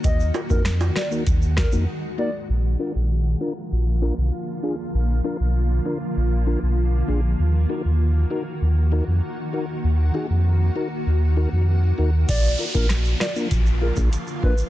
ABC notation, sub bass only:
X:1
M:4/4
L:1/16
Q:1/4=98
K:Bbphr
V:1 name="Sub bass" clef=bass
E,,2 z F,,3 z2 E,,3 F,, z4 | B,,,2 z B,,,3 z2 B,,,3 C,, z4 | B,,,2 z C,,3 z2 B,,,3 C,,3 B,,,2 | E,,2 z E,,3 z2 E,,3 F,, z4 |
E,,2 z F,,3 z2 E,,3 F,,3 E,,2 | B,,,2 z B,,,3 z2 B,,,3 C,, z4 |]